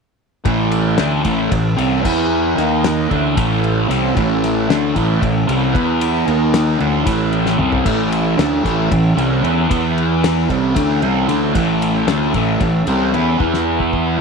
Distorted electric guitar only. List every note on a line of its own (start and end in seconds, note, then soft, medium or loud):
0.45 0.97 A2 medium
0.45 0.98 E3 loud
0.45 0.97 A3 loud
0.98 1.23 D3 medium
0.98 1.24 A3 medium
0.98 1.24 D4 medium
1.24 1.50 A2 loud
1.24 1.50 E3 loud
1.24 1.51 A3 loud
1.51 1.73 A2 medium
1.51 1.73 E3 medium
1.77 2.04 C3 medium
1.77 2.04 G3 loud
1.77 2.05 C4 loud
2.04 2.56 E3 medium
2.04 2.57 B3 medium
2.04 2.57 E4 loud
2.57 3.09 D#3 medium
2.57 3.10 A#3 medium
2.57 3.10 D#4 medium
3.10 3.35 D3 medium
3.10 3.36 A3 loud
3.10 3.36 D4 loud
3.36 3.88 A2 medium
3.36 3.89 E3 medium
3.36 3.89 A3 medium
3.89 4.15 C3 loud
3.89 4.15 G3 loud
3.89 4.16 C4 loud
4.16 4.68 A2 loud
4.16 4.68 E3 loud
4.16 4.69 A3 loud
4.69 4.95 D3 medium
4.69 4.95 A3 medium
4.69 4.95 D4 loud
4.95 5.21 A2 loud
4.95 5.21 E3 loud
4.95 5.22 A3 loud
5.22 5.43 A2 medium
5.22 5.43 E3 medium
5.47 5.73 C3 medium
5.47 5.74 G3 loud
5.47 5.74 C4 loud
5.74 6.26 E3 medium
5.74 6.27 B3 loud
5.74 6.28 E4 loud
6.26 6.78 D#3 medium
6.26 6.79 A#3 medium
6.26 6.80 D#4 loud
6.79 7.04 D3 medium
6.79 7.05 A3 loud
6.79 7.06 D4 loud
7.05 7.58 A2 medium
7.05 7.58 E3 medium
7.05 7.59 A3 loud
7.58 7.84 C3 medium
7.58 7.85 G3 medium
7.58 7.85 C4 medium
7.84 8.37 A2 medium
7.84 8.38 E3 loud
7.84 8.37 A3 loud
8.38 8.63 D3 medium
8.38 8.63 A3 medium
8.38 8.64 D4 medium
8.63 8.89 A2 medium
8.63 8.89 E3 medium
8.63 8.90 A3 loud
8.90 9.12 A2 medium
8.90 9.12 E3 medium
9.16 9.42 C3 medium
9.16 9.43 G3 medium
9.16 9.43 C4 loud
9.42 9.68 E3 medium
9.42 9.69 B3 medium
9.42 9.70 E4 medium
9.70 10.49 E3 medium
9.70 10.49 B3 loud
9.70 10.49 E4 loud
10.49 10.74 C3 medium
10.49 10.75 G3 medium
10.49 10.76 C4 loud
10.75 11.01 D3 medium
10.75 11.01 A3 loud
10.75 11.02 D4 loud
11.01 11.28 C3 medium
11.01 11.28 G3 loud
11.01 11.28 C4 loud
11.28 11.53 D3 loud
11.28 11.54 A3 loud
11.28 11.55 D4 loud
11.54 12.07 A2 loud
11.54 12.07 E3 loud
11.54 12.07 A3 loud
12.08 12.33 D3 medium
12.08 12.34 A3 medium
12.08 12.34 D4 medium
12.34 12.60 A2 medium
12.34 12.60 E3 medium
12.34 12.60 A3 loud
12.61 12.82 A2 medium
12.61 12.82 E3 medium
12.87 13.13 C3 loud
12.87 13.13 G3 loud
12.87 13.14 C4 loud
13.14 13.38 E3 medium
13.14 13.39 B3 loud
13.14 13.40 E4 medium
13.39 14.18 E3 medium
13.39 14.19 B3 loud
13.39 14.19 E4 loud